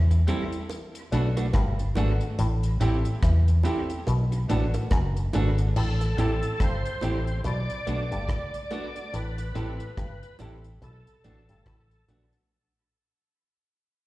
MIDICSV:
0, 0, Header, 1, 8, 480
1, 0, Start_track
1, 0, Tempo, 843882
1, 1356, Time_signature, 4, 2, 24, 8
1, 8001, End_track
2, 0, Start_track
2, 0, Title_t, "Tonewheel organ"
2, 0, Program_c, 0, 16
2, 3285, Note_on_c, 0, 69, 82
2, 3766, Note_on_c, 0, 72, 93
2, 3774, Note_off_c, 0, 69, 0
2, 4217, Note_off_c, 0, 72, 0
2, 4247, Note_on_c, 0, 74, 111
2, 5207, Note_on_c, 0, 71, 79
2, 5229, Note_off_c, 0, 74, 0
2, 5898, Note_off_c, 0, 71, 0
2, 6164, Note_on_c, 0, 69, 108
2, 6857, Note_off_c, 0, 69, 0
2, 8001, End_track
3, 0, Start_track
3, 0, Title_t, "Grand piano"
3, 0, Program_c, 1, 0
3, 154, Note_on_c, 1, 60, 94
3, 156, Note_on_c, 1, 64, 86
3, 159, Note_on_c, 1, 67, 86
3, 161, Note_on_c, 1, 69, 99
3, 273, Note_off_c, 1, 60, 0
3, 274, Note_off_c, 1, 64, 0
3, 275, Note_off_c, 1, 67, 0
3, 276, Note_off_c, 1, 69, 0
3, 634, Note_on_c, 1, 59, 86
3, 636, Note_on_c, 1, 62, 84
3, 638, Note_on_c, 1, 66, 79
3, 640, Note_on_c, 1, 69, 98
3, 753, Note_off_c, 1, 59, 0
3, 754, Note_off_c, 1, 62, 0
3, 755, Note_off_c, 1, 66, 0
3, 756, Note_off_c, 1, 69, 0
3, 1114, Note_on_c, 1, 59, 95
3, 1116, Note_on_c, 1, 62, 83
3, 1118, Note_on_c, 1, 66, 88
3, 1121, Note_on_c, 1, 69, 102
3, 1233, Note_off_c, 1, 59, 0
3, 1234, Note_off_c, 1, 62, 0
3, 1235, Note_off_c, 1, 66, 0
3, 1236, Note_off_c, 1, 69, 0
3, 1593, Note_on_c, 1, 60, 86
3, 1595, Note_on_c, 1, 64, 77
3, 1597, Note_on_c, 1, 67, 81
3, 1600, Note_on_c, 1, 69, 98
3, 1712, Note_off_c, 1, 60, 0
3, 1713, Note_off_c, 1, 64, 0
3, 1714, Note_off_c, 1, 67, 0
3, 1715, Note_off_c, 1, 69, 0
3, 2072, Note_on_c, 1, 60, 91
3, 2075, Note_on_c, 1, 64, 81
3, 2077, Note_on_c, 1, 67, 83
3, 2080, Note_on_c, 1, 69, 93
3, 2191, Note_off_c, 1, 60, 0
3, 2192, Note_off_c, 1, 64, 0
3, 2193, Note_off_c, 1, 67, 0
3, 2195, Note_off_c, 1, 69, 0
3, 2551, Note_on_c, 1, 59, 88
3, 2552, Note_on_c, 1, 62, 82
3, 2555, Note_on_c, 1, 66, 77
3, 2557, Note_on_c, 1, 69, 102
3, 2670, Note_off_c, 1, 59, 0
3, 2671, Note_off_c, 1, 62, 0
3, 2672, Note_off_c, 1, 66, 0
3, 2673, Note_off_c, 1, 69, 0
3, 3031, Note_on_c, 1, 59, 95
3, 3034, Note_on_c, 1, 62, 89
3, 3036, Note_on_c, 1, 66, 87
3, 3039, Note_on_c, 1, 69, 107
3, 3150, Note_off_c, 1, 59, 0
3, 3151, Note_off_c, 1, 62, 0
3, 3153, Note_off_c, 1, 66, 0
3, 3154, Note_off_c, 1, 69, 0
3, 3510, Note_on_c, 1, 60, 84
3, 3512, Note_on_c, 1, 64, 82
3, 3514, Note_on_c, 1, 67, 79
3, 3517, Note_on_c, 1, 69, 96
3, 3629, Note_off_c, 1, 60, 0
3, 3630, Note_off_c, 1, 64, 0
3, 3632, Note_off_c, 1, 67, 0
3, 3633, Note_off_c, 1, 69, 0
3, 3990, Note_on_c, 1, 60, 84
3, 3992, Note_on_c, 1, 64, 83
3, 3995, Note_on_c, 1, 67, 82
3, 3996, Note_on_c, 1, 69, 98
3, 4109, Note_off_c, 1, 60, 0
3, 4110, Note_off_c, 1, 64, 0
3, 4112, Note_off_c, 1, 67, 0
3, 4112, Note_off_c, 1, 69, 0
3, 4470, Note_on_c, 1, 59, 89
3, 4473, Note_on_c, 1, 62, 80
3, 4475, Note_on_c, 1, 66, 88
3, 4477, Note_on_c, 1, 69, 91
3, 4589, Note_off_c, 1, 59, 0
3, 4591, Note_off_c, 1, 62, 0
3, 4591, Note_off_c, 1, 66, 0
3, 4593, Note_off_c, 1, 69, 0
3, 4951, Note_on_c, 1, 59, 99
3, 4953, Note_on_c, 1, 62, 93
3, 4954, Note_on_c, 1, 66, 83
3, 4958, Note_on_c, 1, 69, 100
3, 5070, Note_off_c, 1, 59, 0
3, 5071, Note_off_c, 1, 62, 0
3, 5071, Note_off_c, 1, 66, 0
3, 5073, Note_off_c, 1, 69, 0
3, 5430, Note_on_c, 1, 60, 88
3, 5432, Note_on_c, 1, 64, 76
3, 5435, Note_on_c, 1, 67, 84
3, 5436, Note_on_c, 1, 69, 103
3, 5549, Note_off_c, 1, 60, 0
3, 5550, Note_off_c, 1, 64, 0
3, 5552, Note_off_c, 1, 67, 0
3, 5552, Note_off_c, 1, 69, 0
3, 5912, Note_on_c, 1, 60, 88
3, 5916, Note_on_c, 1, 64, 86
3, 5916, Note_on_c, 1, 67, 88
3, 5919, Note_on_c, 1, 69, 101
3, 6030, Note_off_c, 1, 60, 0
3, 6032, Note_off_c, 1, 64, 0
3, 6032, Note_off_c, 1, 67, 0
3, 6034, Note_off_c, 1, 69, 0
3, 6393, Note_on_c, 1, 59, 81
3, 6395, Note_on_c, 1, 62, 80
3, 6398, Note_on_c, 1, 66, 79
3, 6399, Note_on_c, 1, 69, 93
3, 6511, Note_off_c, 1, 59, 0
3, 6512, Note_off_c, 1, 62, 0
3, 6513, Note_off_c, 1, 66, 0
3, 6514, Note_off_c, 1, 69, 0
3, 6872, Note_on_c, 1, 59, 84
3, 6875, Note_on_c, 1, 62, 81
3, 6877, Note_on_c, 1, 66, 86
3, 6878, Note_on_c, 1, 69, 94
3, 6991, Note_off_c, 1, 59, 0
3, 6992, Note_off_c, 1, 62, 0
3, 6993, Note_off_c, 1, 66, 0
3, 6994, Note_off_c, 1, 69, 0
3, 8001, End_track
4, 0, Start_track
4, 0, Title_t, "Clean electric guitar"
4, 0, Program_c, 2, 27
4, 158, Note_on_c, 2, 55, 80
4, 163, Note_on_c, 2, 60, 92
4, 166, Note_on_c, 2, 64, 109
4, 241, Note_off_c, 2, 55, 0
4, 244, Note_off_c, 2, 60, 0
4, 245, Note_off_c, 2, 64, 0
4, 641, Note_on_c, 2, 57, 85
4, 645, Note_on_c, 2, 62, 84
4, 649, Note_on_c, 2, 66, 103
4, 723, Note_off_c, 2, 57, 0
4, 724, Note_off_c, 2, 62, 0
4, 726, Note_off_c, 2, 66, 0
4, 777, Note_on_c, 2, 66, 70
4, 783, Note_on_c, 2, 62, 59
4, 787, Note_on_c, 2, 57, 53
4, 824, Note_off_c, 2, 66, 0
4, 826, Note_off_c, 2, 62, 0
4, 828, Note_off_c, 2, 57, 0
4, 1118, Note_on_c, 2, 57, 83
4, 1122, Note_on_c, 2, 62, 82
4, 1125, Note_on_c, 2, 66, 96
4, 1201, Note_off_c, 2, 57, 0
4, 1203, Note_off_c, 2, 62, 0
4, 1205, Note_off_c, 2, 66, 0
4, 1597, Note_on_c, 2, 60, 86
4, 1603, Note_on_c, 2, 64, 84
4, 1607, Note_on_c, 2, 67, 97
4, 1680, Note_off_c, 2, 60, 0
4, 1683, Note_off_c, 2, 64, 0
4, 1685, Note_off_c, 2, 67, 0
4, 2073, Note_on_c, 2, 60, 83
4, 2078, Note_on_c, 2, 64, 78
4, 2081, Note_on_c, 2, 67, 80
4, 2158, Note_off_c, 2, 60, 0
4, 2160, Note_off_c, 2, 64, 0
4, 2162, Note_off_c, 2, 67, 0
4, 2557, Note_on_c, 2, 57, 83
4, 2560, Note_on_c, 2, 62, 83
4, 2565, Note_on_c, 2, 66, 89
4, 2639, Note_off_c, 2, 57, 0
4, 2641, Note_off_c, 2, 62, 0
4, 2643, Note_off_c, 2, 66, 0
4, 3037, Note_on_c, 2, 57, 84
4, 3042, Note_on_c, 2, 62, 93
4, 3046, Note_on_c, 2, 66, 100
4, 3120, Note_off_c, 2, 57, 0
4, 3122, Note_off_c, 2, 62, 0
4, 3124, Note_off_c, 2, 66, 0
4, 3517, Note_on_c, 2, 60, 81
4, 3521, Note_on_c, 2, 64, 85
4, 3527, Note_on_c, 2, 67, 93
4, 3599, Note_off_c, 2, 60, 0
4, 3601, Note_off_c, 2, 64, 0
4, 3604, Note_off_c, 2, 67, 0
4, 3997, Note_on_c, 2, 60, 91
4, 4002, Note_on_c, 2, 64, 91
4, 4005, Note_on_c, 2, 67, 93
4, 4079, Note_off_c, 2, 60, 0
4, 4081, Note_off_c, 2, 64, 0
4, 4083, Note_off_c, 2, 67, 0
4, 4476, Note_on_c, 2, 57, 85
4, 4481, Note_on_c, 2, 62, 90
4, 4485, Note_on_c, 2, 66, 90
4, 4559, Note_off_c, 2, 57, 0
4, 4561, Note_off_c, 2, 62, 0
4, 4563, Note_off_c, 2, 66, 0
4, 4955, Note_on_c, 2, 57, 83
4, 4960, Note_on_c, 2, 62, 107
4, 4964, Note_on_c, 2, 66, 102
4, 5038, Note_off_c, 2, 57, 0
4, 5041, Note_off_c, 2, 62, 0
4, 5042, Note_off_c, 2, 66, 0
4, 5434, Note_on_c, 2, 60, 90
4, 5439, Note_on_c, 2, 64, 89
4, 5444, Note_on_c, 2, 67, 93
4, 5517, Note_off_c, 2, 60, 0
4, 5520, Note_off_c, 2, 64, 0
4, 5523, Note_off_c, 2, 67, 0
4, 5915, Note_on_c, 2, 60, 72
4, 5918, Note_on_c, 2, 64, 77
4, 5923, Note_on_c, 2, 67, 79
4, 5998, Note_off_c, 2, 60, 0
4, 6000, Note_off_c, 2, 64, 0
4, 6002, Note_off_c, 2, 67, 0
4, 6397, Note_on_c, 2, 57, 87
4, 6401, Note_on_c, 2, 62, 89
4, 6405, Note_on_c, 2, 66, 94
4, 6479, Note_off_c, 2, 57, 0
4, 6481, Note_off_c, 2, 62, 0
4, 6483, Note_off_c, 2, 66, 0
4, 6878, Note_on_c, 2, 57, 77
4, 6883, Note_on_c, 2, 62, 90
4, 6885, Note_on_c, 2, 66, 98
4, 6960, Note_off_c, 2, 57, 0
4, 6962, Note_off_c, 2, 62, 0
4, 6963, Note_off_c, 2, 66, 0
4, 8001, End_track
5, 0, Start_track
5, 0, Title_t, "Clav"
5, 0, Program_c, 3, 7
5, 0, Note_on_c, 3, 52, 78
5, 62, Note_off_c, 3, 52, 0
5, 638, Note_on_c, 3, 47, 72
5, 781, Note_off_c, 3, 47, 0
5, 877, Note_on_c, 3, 43, 89
5, 1021, Note_off_c, 3, 43, 0
5, 1118, Note_on_c, 3, 44, 67
5, 1202, Note_off_c, 3, 44, 0
5, 1358, Note_on_c, 3, 45, 93
5, 1501, Note_off_c, 3, 45, 0
5, 1597, Note_on_c, 3, 45, 80
5, 1681, Note_off_c, 3, 45, 0
5, 1838, Note_on_c, 3, 52, 78
5, 1981, Note_off_c, 3, 52, 0
5, 2316, Note_on_c, 3, 47, 81
5, 2460, Note_off_c, 3, 47, 0
5, 2557, Note_on_c, 3, 45, 76
5, 2641, Note_off_c, 3, 45, 0
5, 2798, Note_on_c, 3, 42, 90
5, 2941, Note_off_c, 3, 42, 0
5, 3037, Note_on_c, 3, 44, 75
5, 3180, Note_off_c, 3, 44, 0
5, 3277, Note_on_c, 3, 45, 90
5, 3420, Note_off_c, 3, 45, 0
5, 3518, Note_on_c, 3, 45, 85
5, 3601, Note_off_c, 3, 45, 0
5, 3757, Note_on_c, 3, 43, 76
5, 3840, Note_off_c, 3, 43, 0
5, 3997, Note_on_c, 3, 45, 74
5, 4140, Note_off_c, 3, 45, 0
5, 4235, Note_on_c, 3, 47, 92
5, 4319, Note_off_c, 3, 47, 0
5, 4476, Note_on_c, 3, 47, 70
5, 4559, Note_off_c, 3, 47, 0
5, 4616, Note_on_c, 3, 43, 76
5, 4675, Note_off_c, 3, 43, 0
5, 5195, Note_on_c, 3, 45, 94
5, 5339, Note_off_c, 3, 45, 0
5, 5434, Note_on_c, 3, 45, 81
5, 5518, Note_off_c, 3, 45, 0
5, 5674, Note_on_c, 3, 43, 70
5, 5758, Note_off_c, 3, 43, 0
5, 5916, Note_on_c, 3, 45, 73
5, 6059, Note_off_c, 3, 45, 0
5, 6153, Note_on_c, 3, 47, 80
5, 6238, Note_off_c, 3, 47, 0
5, 6394, Note_on_c, 3, 45, 70
5, 6479, Note_off_c, 3, 45, 0
5, 6536, Note_on_c, 3, 43, 70
5, 6595, Note_off_c, 3, 43, 0
5, 6637, Note_on_c, 3, 45, 92
5, 6780, Note_off_c, 3, 45, 0
5, 6874, Note_on_c, 3, 46, 67
5, 6958, Note_off_c, 3, 46, 0
5, 8001, End_track
6, 0, Start_track
6, 0, Title_t, "Fingered electric bass"
6, 0, Program_c, 4, 33
6, 0, Note_on_c, 4, 40, 83
6, 132, Note_off_c, 4, 40, 0
6, 639, Note_on_c, 4, 35, 88
6, 852, Note_off_c, 4, 35, 0
6, 875, Note_on_c, 4, 31, 87
6, 1090, Note_off_c, 4, 31, 0
6, 1118, Note_on_c, 4, 32, 84
6, 1243, Note_off_c, 4, 32, 0
6, 1358, Note_on_c, 4, 33, 90
6, 1571, Note_off_c, 4, 33, 0
6, 1598, Note_on_c, 4, 33, 92
6, 1722, Note_off_c, 4, 33, 0
6, 1836, Note_on_c, 4, 40, 88
6, 2050, Note_off_c, 4, 40, 0
6, 2317, Note_on_c, 4, 35, 91
6, 2530, Note_off_c, 4, 35, 0
6, 2557, Note_on_c, 4, 33, 89
6, 2682, Note_off_c, 4, 33, 0
6, 2796, Note_on_c, 4, 30, 92
6, 3009, Note_off_c, 4, 30, 0
6, 3038, Note_on_c, 4, 32, 89
6, 3251, Note_off_c, 4, 32, 0
6, 3277, Note_on_c, 4, 33, 93
6, 3490, Note_off_c, 4, 33, 0
6, 3517, Note_on_c, 4, 33, 103
6, 3641, Note_off_c, 4, 33, 0
6, 3756, Note_on_c, 4, 31, 95
6, 3881, Note_off_c, 4, 31, 0
6, 3999, Note_on_c, 4, 33, 86
6, 4211, Note_off_c, 4, 33, 0
6, 4238, Note_on_c, 4, 35, 103
6, 4362, Note_off_c, 4, 35, 0
6, 4478, Note_on_c, 4, 35, 96
6, 4601, Note_off_c, 4, 35, 0
6, 4616, Note_on_c, 4, 31, 84
6, 4704, Note_off_c, 4, 31, 0
6, 5196, Note_on_c, 4, 33, 103
6, 5410, Note_off_c, 4, 33, 0
6, 5436, Note_on_c, 4, 33, 100
6, 5560, Note_off_c, 4, 33, 0
6, 5675, Note_on_c, 4, 31, 86
6, 5800, Note_off_c, 4, 31, 0
6, 5916, Note_on_c, 4, 33, 89
6, 6130, Note_off_c, 4, 33, 0
6, 6155, Note_on_c, 4, 35, 93
6, 6280, Note_off_c, 4, 35, 0
6, 6396, Note_on_c, 4, 33, 88
6, 6521, Note_off_c, 4, 33, 0
6, 6535, Note_on_c, 4, 31, 79
6, 6624, Note_off_c, 4, 31, 0
6, 6633, Note_on_c, 4, 33, 93
6, 6848, Note_off_c, 4, 33, 0
6, 6873, Note_on_c, 4, 34, 91
6, 6999, Note_off_c, 4, 34, 0
6, 8001, End_track
7, 0, Start_track
7, 0, Title_t, "Muted clean electric guitar strokes"
7, 62, Note_on_c, 9, 29, 40
7, 119, Note_off_c, 9, 29, 0
7, 2218, Note_on_c, 9, 29, 53
7, 2275, Note_off_c, 9, 29, 0
7, 2458, Note_on_c, 9, 29, 47
7, 2515, Note_off_c, 9, 29, 0
7, 5096, Note_on_c, 9, 29, 43
7, 5153, Note_off_c, 9, 29, 0
7, 8001, End_track
8, 0, Start_track
8, 0, Title_t, "Drums"
8, 62, Note_on_c, 9, 42, 45
8, 119, Note_off_c, 9, 42, 0
8, 157, Note_on_c, 9, 42, 62
8, 214, Note_off_c, 9, 42, 0
8, 298, Note_on_c, 9, 42, 51
8, 355, Note_off_c, 9, 42, 0
8, 395, Note_on_c, 9, 60, 71
8, 401, Note_on_c, 9, 42, 70
8, 452, Note_off_c, 9, 60, 0
8, 458, Note_off_c, 9, 42, 0
8, 540, Note_on_c, 9, 42, 51
8, 597, Note_off_c, 9, 42, 0
8, 639, Note_on_c, 9, 42, 75
8, 696, Note_off_c, 9, 42, 0
8, 779, Note_on_c, 9, 42, 52
8, 780, Note_on_c, 9, 60, 85
8, 836, Note_off_c, 9, 42, 0
8, 837, Note_off_c, 9, 60, 0
8, 873, Note_on_c, 9, 60, 75
8, 874, Note_on_c, 9, 42, 76
8, 875, Note_on_c, 9, 36, 115
8, 878, Note_on_c, 9, 37, 123
8, 929, Note_off_c, 9, 60, 0
8, 931, Note_off_c, 9, 42, 0
8, 932, Note_off_c, 9, 36, 0
8, 935, Note_off_c, 9, 37, 0
8, 1019, Note_on_c, 9, 42, 47
8, 1076, Note_off_c, 9, 42, 0
8, 1111, Note_on_c, 9, 60, 72
8, 1111, Note_on_c, 9, 61, 74
8, 1118, Note_on_c, 9, 42, 75
8, 1168, Note_off_c, 9, 60, 0
8, 1168, Note_off_c, 9, 61, 0
8, 1175, Note_off_c, 9, 42, 0
8, 1255, Note_on_c, 9, 42, 48
8, 1312, Note_off_c, 9, 42, 0
8, 1358, Note_on_c, 9, 42, 95
8, 1415, Note_off_c, 9, 42, 0
8, 1498, Note_on_c, 9, 42, 59
8, 1555, Note_off_c, 9, 42, 0
8, 1597, Note_on_c, 9, 42, 76
8, 1654, Note_off_c, 9, 42, 0
8, 1735, Note_on_c, 9, 42, 48
8, 1792, Note_off_c, 9, 42, 0
8, 1835, Note_on_c, 9, 36, 110
8, 1835, Note_on_c, 9, 37, 101
8, 1835, Note_on_c, 9, 42, 96
8, 1891, Note_off_c, 9, 36, 0
8, 1892, Note_off_c, 9, 37, 0
8, 1892, Note_off_c, 9, 42, 0
8, 1979, Note_on_c, 9, 42, 48
8, 2036, Note_off_c, 9, 42, 0
8, 2067, Note_on_c, 9, 61, 75
8, 2075, Note_on_c, 9, 42, 68
8, 2124, Note_off_c, 9, 61, 0
8, 2132, Note_off_c, 9, 42, 0
8, 2217, Note_on_c, 9, 42, 51
8, 2274, Note_off_c, 9, 42, 0
8, 2314, Note_on_c, 9, 60, 70
8, 2319, Note_on_c, 9, 42, 78
8, 2370, Note_off_c, 9, 60, 0
8, 2375, Note_off_c, 9, 42, 0
8, 2458, Note_on_c, 9, 42, 55
8, 2515, Note_off_c, 9, 42, 0
8, 2557, Note_on_c, 9, 42, 74
8, 2614, Note_off_c, 9, 42, 0
8, 2695, Note_on_c, 9, 42, 53
8, 2698, Note_on_c, 9, 60, 76
8, 2752, Note_off_c, 9, 42, 0
8, 2755, Note_off_c, 9, 60, 0
8, 2791, Note_on_c, 9, 60, 67
8, 2793, Note_on_c, 9, 36, 118
8, 2793, Note_on_c, 9, 42, 75
8, 2796, Note_on_c, 9, 37, 121
8, 2848, Note_off_c, 9, 60, 0
8, 2850, Note_off_c, 9, 36, 0
8, 2850, Note_off_c, 9, 42, 0
8, 2853, Note_off_c, 9, 37, 0
8, 2938, Note_on_c, 9, 42, 47
8, 2995, Note_off_c, 9, 42, 0
8, 3033, Note_on_c, 9, 60, 71
8, 3033, Note_on_c, 9, 61, 73
8, 3037, Note_on_c, 9, 42, 70
8, 3090, Note_off_c, 9, 60, 0
8, 3090, Note_off_c, 9, 61, 0
8, 3094, Note_off_c, 9, 42, 0
8, 3174, Note_on_c, 9, 42, 50
8, 3231, Note_off_c, 9, 42, 0
8, 3277, Note_on_c, 9, 49, 93
8, 3334, Note_off_c, 9, 49, 0
8, 3416, Note_on_c, 9, 60, 49
8, 3418, Note_on_c, 9, 42, 56
8, 3473, Note_off_c, 9, 60, 0
8, 3475, Note_off_c, 9, 42, 0
8, 3517, Note_on_c, 9, 42, 69
8, 3573, Note_off_c, 9, 42, 0
8, 3655, Note_on_c, 9, 42, 50
8, 3712, Note_off_c, 9, 42, 0
8, 3754, Note_on_c, 9, 36, 104
8, 3755, Note_on_c, 9, 37, 94
8, 3755, Note_on_c, 9, 42, 95
8, 3811, Note_off_c, 9, 36, 0
8, 3812, Note_off_c, 9, 37, 0
8, 3812, Note_off_c, 9, 42, 0
8, 3899, Note_on_c, 9, 42, 48
8, 3956, Note_off_c, 9, 42, 0
8, 3989, Note_on_c, 9, 61, 76
8, 3995, Note_on_c, 9, 42, 67
8, 4046, Note_off_c, 9, 61, 0
8, 4052, Note_off_c, 9, 42, 0
8, 4137, Note_on_c, 9, 42, 50
8, 4194, Note_off_c, 9, 42, 0
8, 4234, Note_on_c, 9, 60, 65
8, 4238, Note_on_c, 9, 42, 71
8, 4291, Note_off_c, 9, 60, 0
8, 4295, Note_off_c, 9, 42, 0
8, 4378, Note_on_c, 9, 42, 55
8, 4435, Note_off_c, 9, 42, 0
8, 4477, Note_on_c, 9, 42, 75
8, 4534, Note_off_c, 9, 42, 0
8, 4618, Note_on_c, 9, 42, 54
8, 4675, Note_off_c, 9, 42, 0
8, 4713, Note_on_c, 9, 36, 125
8, 4714, Note_on_c, 9, 42, 76
8, 4714, Note_on_c, 9, 60, 71
8, 4717, Note_on_c, 9, 37, 121
8, 4770, Note_off_c, 9, 36, 0
8, 4771, Note_off_c, 9, 42, 0
8, 4771, Note_off_c, 9, 60, 0
8, 4774, Note_off_c, 9, 37, 0
8, 4857, Note_on_c, 9, 42, 52
8, 4914, Note_off_c, 9, 42, 0
8, 4952, Note_on_c, 9, 60, 72
8, 4952, Note_on_c, 9, 61, 66
8, 4956, Note_on_c, 9, 42, 71
8, 5009, Note_off_c, 9, 60, 0
8, 5009, Note_off_c, 9, 61, 0
8, 5013, Note_off_c, 9, 42, 0
8, 5095, Note_on_c, 9, 42, 50
8, 5152, Note_off_c, 9, 42, 0
8, 5197, Note_on_c, 9, 42, 94
8, 5254, Note_off_c, 9, 42, 0
8, 5336, Note_on_c, 9, 42, 61
8, 5336, Note_on_c, 9, 60, 50
8, 5393, Note_off_c, 9, 42, 0
8, 5393, Note_off_c, 9, 60, 0
8, 5434, Note_on_c, 9, 42, 70
8, 5491, Note_off_c, 9, 42, 0
8, 5574, Note_on_c, 9, 42, 55
8, 5631, Note_off_c, 9, 42, 0
8, 5673, Note_on_c, 9, 36, 112
8, 5673, Note_on_c, 9, 37, 96
8, 5674, Note_on_c, 9, 42, 96
8, 5730, Note_off_c, 9, 36, 0
8, 5730, Note_off_c, 9, 37, 0
8, 5730, Note_off_c, 9, 42, 0
8, 5818, Note_on_c, 9, 42, 46
8, 5875, Note_off_c, 9, 42, 0
8, 5909, Note_on_c, 9, 61, 76
8, 5913, Note_on_c, 9, 42, 65
8, 5966, Note_off_c, 9, 61, 0
8, 5970, Note_off_c, 9, 42, 0
8, 6054, Note_on_c, 9, 42, 49
8, 6111, Note_off_c, 9, 42, 0
8, 6155, Note_on_c, 9, 60, 62
8, 6157, Note_on_c, 9, 42, 63
8, 6212, Note_off_c, 9, 60, 0
8, 6214, Note_off_c, 9, 42, 0
8, 6297, Note_on_c, 9, 42, 56
8, 6354, Note_off_c, 9, 42, 0
8, 6395, Note_on_c, 9, 42, 75
8, 6452, Note_off_c, 9, 42, 0
8, 6534, Note_on_c, 9, 42, 52
8, 6591, Note_off_c, 9, 42, 0
8, 6631, Note_on_c, 9, 42, 68
8, 6632, Note_on_c, 9, 36, 121
8, 6634, Note_on_c, 9, 37, 123
8, 6634, Note_on_c, 9, 60, 69
8, 6688, Note_off_c, 9, 42, 0
8, 6689, Note_off_c, 9, 36, 0
8, 6691, Note_off_c, 9, 37, 0
8, 6691, Note_off_c, 9, 60, 0
8, 6776, Note_on_c, 9, 42, 48
8, 6833, Note_off_c, 9, 42, 0
8, 6874, Note_on_c, 9, 60, 68
8, 6874, Note_on_c, 9, 61, 68
8, 6875, Note_on_c, 9, 42, 67
8, 6931, Note_off_c, 9, 60, 0
8, 6931, Note_off_c, 9, 61, 0
8, 6932, Note_off_c, 9, 42, 0
8, 7011, Note_on_c, 9, 42, 50
8, 7068, Note_off_c, 9, 42, 0
8, 8001, End_track
0, 0, End_of_file